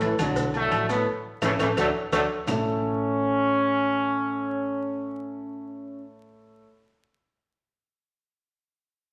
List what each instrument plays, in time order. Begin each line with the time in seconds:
Already playing: fingered electric bass A1, grand piano A3 A4 C#5
0.01 trombone section E3, cowbell, high conga, low timbale, low agogo, maracas
0.19 fingered electric bass B1, trombone section A2 D3 F#3, grand piano D3 D4 D5, high conga, low conga, low agogo, claves, maracas
0.36 cowbell, high conga, low conga, maracas
0.54 trombone section D3 F#3 A3, grand piano F#3 F#4 A4, high conga, low agogo, maracas
0.71 fingered electric bass A1, cowbell, high conga, low timbale, low agogo, claves, maracas
0.89 trombone section E3 B3, grand piano A3 A4 C#5, cowbell, high conga, low agogo, maracas
1.41 fingered electric bass A1, trombone section C#3 E3 A3, grand piano C#4 E4 A4, cowbell, high conga, high timbale, claves, maracas
1.59 fingered electric bass A1, trombone section C#3 E3 A3, grand piano C#4 E4 A4, cowbell, high conga, high timbale, claves, maracas
1.77 fingered electric bass D2, trombone section D3 F#3 A3, grand piano D4 F#4 A4, cowbell, high conga, high timbale, claves, maracas
2.12 fingered electric bass D2, trombone section D3 F#3 A3, grand piano D4 F#4 A4, cowbell, high conga, high timbale, claves, maracas
2.47 fingered electric bass A1, grand piano A3 E4 A4 C#5 E5 A5, trombone section C#4, low bongo, low conga, low timbale, claves, maracas